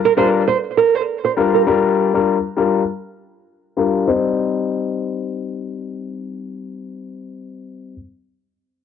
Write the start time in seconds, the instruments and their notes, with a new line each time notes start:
0.05 nylon-string guitar A#4
0.17 grand piano G3 D4 F4 A#4, nylon-string guitar C5
0.48 nylon-string guitar C5
0.77 nylon-string guitar A#4
0.95 nylon-string guitar C5
1.25 nylon-string guitar C5
1.37 grand piano G3 D4 F4 A#4
1.54 nylon-string guitar A#4
1.67 grand piano G3 D4 F4 A#4
2.14 grand piano G3 D4 F4 A#4
2.57 grand piano G3 D4 F4 A#4
3.77 grand piano G3 D4 F4 A#4
4.07 grand piano G3 C4 D#4 C5